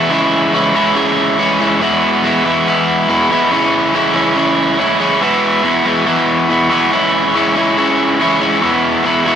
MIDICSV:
0, 0, Header, 1, 2, 480
1, 0, Start_track
1, 0, Tempo, 425834
1, 126, Time_signature, 4, 2, 24, 8
1, 10544, End_track
2, 0, Start_track
2, 0, Title_t, "Overdriven electric guitar"
2, 0, Program_c, 0, 29
2, 0, Note_on_c, 0, 52, 81
2, 0, Note_on_c, 0, 56, 82
2, 0, Note_on_c, 0, 59, 86
2, 0, Note_on_c, 0, 64, 108
2, 109, Note_on_c, 0, 49, 93
2, 114, Note_off_c, 0, 52, 0
2, 119, Note_on_c, 0, 52, 92
2, 120, Note_off_c, 0, 56, 0
2, 124, Note_on_c, 0, 56, 107
2, 125, Note_off_c, 0, 59, 0
2, 129, Note_on_c, 0, 61, 99
2, 133, Note_off_c, 0, 64, 0
2, 137, Note_on_c, 0, 64, 105
2, 581, Note_off_c, 0, 49, 0
2, 595, Note_on_c, 0, 49, 93
2, 599, Note_off_c, 0, 52, 0
2, 604, Note_off_c, 0, 56, 0
2, 604, Note_off_c, 0, 61, 0
2, 604, Note_on_c, 0, 52, 84
2, 609, Note_on_c, 0, 56, 86
2, 615, Note_off_c, 0, 64, 0
2, 618, Note_on_c, 0, 61, 91
2, 619, Note_on_c, 0, 64, 95
2, 820, Note_off_c, 0, 49, 0
2, 833, Note_on_c, 0, 49, 85
2, 834, Note_off_c, 0, 52, 0
2, 838, Note_off_c, 0, 61, 0
2, 838, Note_on_c, 0, 52, 80
2, 843, Note_off_c, 0, 56, 0
2, 848, Note_on_c, 0, 56, 84
2, 852, Note_off_c, 0, 64, 0
2, 852, Note_on_c, 0, 61, 80
2, 856, Note_on_c, 0, 64, 104
2, 1059, Note_off_c, 0, 49, 0
2, 1072, Note_on_c, 0, 49, 100
2, 1076, Note_off_c, 0, 52, 0
2, 1079, Note_off_c, 0, 61, 0
2, 1081, Note_on_c, 0, 52, 85
2, 1082, Note_off_c, 0, 56, 0
2, 1086, Note_on_c, 0, 56, 108
2, 1092, Note_on_c, 0, 61, 102
2, 1094, Note_off_c, 0, 64, 0
2, 1099, Note_on_c, 0, 64, 110
2, 1539, Note_off_c, 0, 49, 0
2, 1553, Note_on_c, 0, 49, 76
2, 1556, Note_off_c, 0, 61, 0
2, 1558, Note_off_c, 0, 52, 0
2, 1562, Note_on_c, 0, 52, 85
2, 1563, Note_off_c, 0, 56, 0
2, 1567, Note_on_c, 0, 56, 84
2, 1570, Note_on_c, 0, 61, 103
2, 1577, Note_off_c, 0, 64, 0
2, 1581, Note_on_c, 0, 64, 83
2, 1784, Note_off_c, 0, 49, 0
2, 1797, Note_on_c, 0, 49, 68
2, 1800, Note_off_c, 0, 52, 0
2, 1805, Note_on_c, 0, 52, 88
2, 1807, Note_off_c, 0, 61, 0
2, 1808, Note_off_c, 0, 56, 0
2, 1813, Note_on_c, 0, 56, 84
2, 1817, Note_off_c, 0, 64, 0
2, 1821, Note_on_c, 0, 61, 87
2, 1821, Note_on_c, 0, 64, 88
2, 2026, Note_off_c, 0, 49, 0
2, 2030, Note_on_c, 0, 40, 89
2, 2035, Note_on_c, 0, 47, 103
2, 2036, Note_off_c, 0, 52, 0
2, 2038, Note_off_c, 0, 61, 0
2, 2040, Note_on_c, 0, 52, 111
2, 2046, Note_off_c, 0, 56, 0
2, 2051, Note_on_c, 0, 56, 105
2, 2053, Note_off_c, 0, 64, 0
2, 2054, Note_on_c, 0, 59, 109
2, 2058, Note_on_c, 0, 64, 102
2, 2495, Note_off_c, 0, 40, 0
2, 2504, Note_off_c, 0, 47, 0
2, 2508, Note_on_c, 0, 40, 84
2, 2518, Note_off_c, 0, 52, 0
2, 2518, Note_on_c, 0, 47, 81
2, 2523, Note_on_c, 0, 52, 90
2, 2524, Note_off_c, 0, 56, 0
2, 2529, Note_on_c, 0, 56, 102
2, 2533, Note_off_c, 0, 59, 0
2, 2537, Note_off_c, 0, 64, 0
2, 2537, Note_on_c, 0, 59, 91
2, 2542, Note_on_c, 0, 64, 82
2, 2732, Note_off_c, 0, 40, 0
2, 2740, Note_off_c, 0, 47, 0
2, 2746, Note_on_c, 0, 40, 83
2, 2753, Note_on_c, 0, 47, 89
2, 2754, Note_off_c, 0, 52, 0
2, 2758, Note_on_c, 0, 52, 87
2, 2759, Note_off_c, 0, 56, 0
2, 2763, Note_on_c, 0, 56, 82
2, 2767, Note_off_c, 0, 59, 0
2, 2771, Note_off_c, 0, 64, 0
2, 2772, Note_on_c, 0, 59, 86
2, 2776, Note_on_c, 0, 64, 97
2, 2984, Note_off_c, 0, 40, 0
2, 2991, Note_off_c, 0, 47, 0
2, 2997, Note_on_c, 0, 40, 96
2, 3005, Note_on_c, 0, 47, 96
2, 3006, Note_off_c, 0, 52, 0
2, 3010, Note_on_c, 0, 52, 94
2, 3011, Note_off_c, 0, 56, 0
2, 3015, Note_on_c, 0, 56, 102
2, 3018, Note_off_c, 0, 59, 0
2, 3021, Note_off_c, 0, 64, 0
2, 3022, Note_on_c, 0, 59, 98
2, 3026, Note_on_c, 0, 64, 114
2, 3458, Note_off_c, 0, 40, 0
2, 3465, Note_off_c, 0, 47, 0
2, 3472, Note_on_c, 0, 40, 87
2, 3478, Note_off_c, 0, 52, 0
2, 3478, Note_on_c, 0, 47, 93
2, 3482, Note_off_c, 0, 56, 0
2, 3482, Note_on_c, 0, 52, 86
2, 3486, Note_on_c, 0, 56, 85
2, 3487, Note_off_c, 0, 59, 0
2, 3492, Note_off_c, 0, 64, 0
2, 3492, Note_on_c, 0, 59, 92
2, 3497, Note_on_c, 0, 64, 100
2, 3697, Note_off_c, 0, 40, 0
2, 3707, Note_off_c, 0, 47, 0
2, 3711, Note_on_c, 0, 40, 78
2, 3721, Note_off_c, 0, 52, 0
2, 3721, Note_on_c, 0, 47, 85
2, 3725, Note_off_c, 0, 56, 0
2, 3725, Note_on_c, 0, 52, 80
2, 3729, Note_on_c, 0, 56, 82
2, 3730, Note_off_c, 0, 59, 0
2, 3735, Note_on_c, 0, 59, 87
2, 3736, Note_off_c, 0, 64, 0
2, 3740, Note_on_c, 0, 64, 100
2, 3942, Note_off_c, 0, 40, 0
2, 3947, Note_off_c, 0, 47, 0
2, 3954, Note_on_c, 0, 49, 94
2, 3956, Note_off_c, 0, 52, 0
2, 3961, Note_on_c, 0, 52, 83
2, 3965, Note_off_c, 0, 56, 0
2, 3967, Note_off_c, 0, 59, 0
2, 3970, Note_on_c, 0, 56, 91
2, 3971, Note_on_c, 0, 61, 109
2, 3976, Note_off_c, 0, 64, 0
2, 3981, Note_on_c, 0, 64, 110
2, 4421, Note_off_c, 0, 49, 0
2, 4434, Note_on_c, 0, 49, 82
2, 4436, Note_off_c, 0, 61, 0
2, 4440, Note_off_c, 0, 52, 0
2, 4444, Note_on_c, 0, 52, 84
2, 4445, Note_off_c, 0, 56, 0
2, 4449, Note_on_c, 0, 56, 94
2, 4450, Note_on_c, 0, 61, 80
2, 4453, Note_off_c, 0, 64, 0
2, 4458, Note_on_c, 0, 64, 96
2, 4649, Note_off_c, 0, 49, 0
2, 4663, Note_on_c, 0, 49, 90
2, 4665, Note_off_c, 0, 52, 0
2, 4670, Note_on_c, 0, 52, 93
2, 4671, Note_off_c, 0, 61, 0
2, 4674, Note_off_c, 0, 56, 0
2, 4678, Note_on_c, 0, 56, 78
2, 4682, Note_off_c, 0, 64, 0
2, 4685, Note_on_c, 0, 61, 94
2, 4686, Note_on_c, 0, 64, 91
2, 4895, Note_off_c, 0, 49, 0
2, 4909, Note_on_c, 0, 49, 93
2, 4910, Note_off_c, 0, 52, 0
2, 4915, Note_off_c, 0, 61, 0
2, 4915, Note_on_c, 0, 52, 97
2, 4920, Note_off_c, 0, 56, 0
2, 4924, Note_on_c, 0, 56, 103
2, 4929, Note_on_c, 0, 61, 100
2, 4931, Note_off_c, 0, 64, 0
2, 4935, Note_on_c, 0, 64, 107
2, 5370, Note_off_c, 0, 49, 0
2, 5384, Note_on_c, 0, 49, 86
2, 5385, Note_off_c, 0, 52, 0
2, 5388, Note_off_c, 0, 61, 0
2, 5389, Note_on_c, 0, 52, 85
2, 5392, Note_off_c, 0, 56, 0
2, 5396, Note_on_c, 0, 56, 85
2, 5402, Note_on_c, 0, 61, 75
2, 5406, Note_off_c, 0, 64, 0
2, 5410, Note_on_c, 0, 64, 102
2, 5611, Note_off_c, 0, 49, 0
2, 5625, Note_off_c, 0, 61, 0
2, 5625, Note_on_c, 0, 49, 79
2, 5627, Note_off_c, 0, 52, 0
2, 5628, Note_off_c, 0, 56, 0
2, 5631, Note_on_c, 0, 52, 82
2, 5632, Note_on_c, 0, 56, 89
2, 5639, Note_on_c, 0, 61, 87
2, 5642, Note_off_c, 0, 64, 0
2, 5646, Note_on_c, 0, 64, 92
2, 5860, Note_off_c, 0, 49, 0
2, 5864, Note_on_c, 0, 40, 88
2, 5867, Note_off_c, 0, 61, 0
2, 5871, Note_on_c, 0, 47, 112
2, 5876, Note_off_c, 0, 52, 0
2, 5878, Note_off_c, 0, 56, 0
2, 5881, Note_on_c, 0, 52, 106
2, 5883, Note_on_c, 0, 56, 88
2, 5887, Note_on_c, 0, 59, 106
2, 5888, Note_off_c, 0, 64, 0
2, 5893, Note_on_c, 0, 64, 111
2, 6331, Note_off_c, 0, 40, 0
2, 6336, Note_off_c, 0, 47, 0
2, 6345, Note_on_c, 0, 40, 75
2, 6349, Note_on_c, 0, 47, 87
2, 6351, Note_off_c, 0, 52, 0
2, 6352, Note_off_c, 0, 56, 0
2, 6355, Note_on_c, 0, 52, 84
2, 6356, Note_on_c, 0, 56, 91
2, 6363, Note_off_c, 0, 59, 0
2, 6364, Note_off_c, 0, 64, 0
2, 6367, Note_on_c, 0, 59, 99
2, 6368, Note_on_c, 0, 64, 90
2, 6570, Note_off_c, 0, 40, 0
2, 6575, Note_off_c, 0, 47, 0
2, 6584, Note_on_c, 0, 40, 85
2, 6589, Note_on_c, 0, 47, 84
2, 6592, Note_off_c, 0, 52, 0
2, 6595, Note_off_c, 0, 56, 0
2, 6597, Note_on_c, 0, 52, 83
2, 6600, Note_on_c, 0, 56, 103
2, 6602, Note_off_c, 0, 59, 0
2, 6607, Note_on_c, 0, 59, 100
2, 6609, Note_off_c, 0, 64, 0
2, 6613, Note_on_c, 0, 64, 101
2, 6809, Note_off_c, 0, 40, 0
2, 6816, Note_off_c, 0, 47, 0
2, 6822, Note_on_c, 0, 40, 106
2, 6830, Note_on_c, 0, 47, 108
2, 6834, Note_off_c, 0, 52, 0
2, 6836, Note_off_c, 0, 56, 0
2, 6838, Note_on_c, 0, 52, 106
2, 6840, Note_off_c, 0, 59, 0
2, 6840, Note_on_c, 0, 56, 94
2, 6844, Note_on_c, 0, 59, 92
2, 6845, Note_off_c, 0, 64, 0
2, 6850, Note_on_c, 0, 64, 90
2, 7286, Note_off_c, 0, 40, 0
2, 7295, Note_off_c, 0, 47, 0
2, 7300, Note_on_c, 0, 40, 97
2, 7308, Note_on_c, 0, 47, 84
2, 7309, Note_off_c, 0, 52, 0
2, 7309, Note_off_c, 0, 56, 0
2, 7313, Note_on_c, 0, 52, 88
2, 7314, Note_on_c, 0, 56, 80
2, 7319, Note_off_c, 0, 59, 0
2, 7323, Note_off_c, 0, 64, 0
2, 7323, Note_on_c, 0, 59, 90
2, 7327, Note_on_c, 0, 64, 88
2, 7527, Note_off_c, 0, 40, 0
2, 7534, Note_off_c, 0, 47, 0
2, 7541, Note_on_c, 0, 40, 80
2, 7548, Note_on_c, 0, 47, 93
2, 7553, Note_off_c, 0, 52, 0
2, 7555, Note_off_c, 0, 56, 0
2, 7558, Note_on_c, 0, 52, 85
2, 7559, Note_off_c, 0, 59, 0
2, 7559, Note_on_c, 0, 56, 78
2, 7563, Note_on_c, 0, 59, 89
2, 7565, Note_off_c, 0, 64, 0
2, 7569, Note_on_c, 0, 64, 92
2, 7778, Note_off_c, 0, 40, 0
2, 7780, Note_off_c, 0, 47, 0
2, 7784, Note_on_c, 0, 49, 97
2, 7790, Note_off_c, 0, 52, 0
2, 7792, Note_off_c, 0, 56, 0
2, 7795, Note_on_c, 0, 52, 98
2, 7797, Note_on_c, 0, 56, 98
2, 7800, Note_off_c, 0, 59, 0
2, 7804, Note_on_c, 0, 61, 93
2, 7808, Note_off_c, 0, 64, 0
2, 7812, Note_on_c, 0, 64, 112
2, 8260, Note_off_c, 0, 49, 0
2, 8274, Note_on_c, 0, 49, 92
2, 8279, Note_off_c, 0, 61, 0
2, 8280, Note_off_c, 0, 52, 0
2, 8284, Note_off_c, 0, 56, 0
2, 8285, Note_on_c, 0, 52, 86
2, 8289, Note_on_c, 0, 56, 82
2, 8293, Note_off_c, 0, 64, 0
2, 8293, Note_on_c, 0, 61, 105
2, 8298, Note_on_c, 0, 64, 93
2, 8497, Note_off_c, 0, 49, 0
2, 8510, Note_on_c, 0, 49, 88
2, 8513, Note_off_c, 0, 52, 0
2, 8516, Note_off_c, 0, 61, 0
2, 8517, Note_on_c, 0, 52, 86
2, 8523, Note_off_c, 0, 56, 0
2, 8528, Note_on_c, 0, 56, 82
2, 8529, Note_on_c, 0, 61, 87
2, 8533, Note_off_c, 0, 64, 0
2, 8537, Note_on_c, 0, 64, 96
2, 8738, Note_off_c, 0, 49, 0
2, 8751, Note_on_c, 0, 49, 93
2, 8756, Note_off_c, 0, 52, 0
2, 8757, Note_off_c, 0, 56, 0
2, 8758, Note_off_c, 0, 61, 0
2, 8760, Note_on_c, 0, 52, 100
2, 8762, Note_on_c, 0, 56, 98
2, 8771, Note_on_c, 0, 61, 108
2, 8772, Note_off_c, 0, 64, 0
2, 8777, Note_on_c, 0, 64, 100
2, 9219, Note_off_c, 0, 49, 0
2, 9232, Note_on_c, 0, 49, 87
2, 9236, Note_off_c, 0, 52, 0
2, 9241, Note_off_c, 0, 61, 0
2, 9241, Note_on_c, 0, 52, 85
2, 9242, Note_off_c, 0, 56, 0
2, 9247, Note_on_c, 0, 56, 83
2, 9255, Note_off_c, 0, 64, 0
2, 9255, Note_on_c, 0, 61, 85
2, 9259, Note_on_c, 0, 64, 86
2, 9453, Note_off_c, 0, 49, 0
2, 9467, Note_on_c, 0, 49, 70
2, 9471, Note_off_c, 0, 52, 0
2, 9474, Note_off_c, 0, 61, 0
2, 9475, Note_off_c, 0, 56, 0
2, 9475, Note_on_c, 0, 52, 80
2, 9480, Note_on_c, 0, 56, 90
2, 9487, Note_on_c, 0, 61, 105
2, 9491, Note_off_c, 0, 64, 0
2, 9495, Note_on_c, 0, 64, 93
2, 9700, Note_off_c, 0, 49, 0
2, 9701, Note_on_c, 0, 40, 93
2, 9705, Note_on_c, 0, 47, 99
2, 9707, Note_off_c, 0, 52, 0
2, 9711, Note_on_c, 0, 52, 112
2, 9713, Note_off_c, 0, 61, 0
2, 9717, Note_off_c, 0, 56, 0
2, 9721, Note_on_c, 0, 56, 112
2, 9722, Note_on_c, 0, 59, 97
2, 9725, Note_off_c, 0, 64, 0
2, 9730, Note_on_c, 0, 64, 96
2, 10167, Note_off_c, 0, 40, 0
2, 10176, Note_off_c, 0, 47, 0
2, 10180, Note_off_c, 0, 52, 0
2, 10181, Note_on_c, 0, 40, 87
2, 10184, Note_off_c, 0, 56, 0
2, 10189, Note_off_c, 0, 59, 0
2, 10190, Note_on_c, 0, 47, 96
2, 10194, Note_on_c, 0, 52, 92
2, 10198, Note_on_c, 0, 56, 97
2, 10200, Note_off_c, 0, 64, 0
2, 10203, Note_on_c, 0, 59, 90
2, 10213, Note_on_c, 0, 64, 85
2, 10412, Note_off_c, 0, 40, 0
2, 10418, Note_off_c, 0, 47, 0
2, 10425, Note_on_c, 0, 40, 79
2, 10427, Note_off_c, 0, 52, 0
2, 10430, Note_off_c, 0, 56, 0
2, 10432, Note_on_c, 0, 47, 89
2, 10436, Note_off_c, 0, 59, 0
2, 10440, Note_on_c, 0, 52, 96
2, 10444, Note_on_c, 0, 56, 90
2, 10445, Note_off_c, 0, 64, 0
2, 10450, Note_on_c, 0, 59, 101
2, 10458, Note_on_c, 0, 64, 96
2, 10544, Note_off_c, 0, 40, 0
2, 10544, Note_off_c, 0, 47, 0
2, 10544, Note_off_c, 0, 52, 0
2, 10544, Note_off_c, 0, 56, 0
2, 10544, Note_off_c, 0, 59, 0
2, 10544, Note_off_c, 0, 64, 0
2, 10544, End_track
0, 0, End_of_file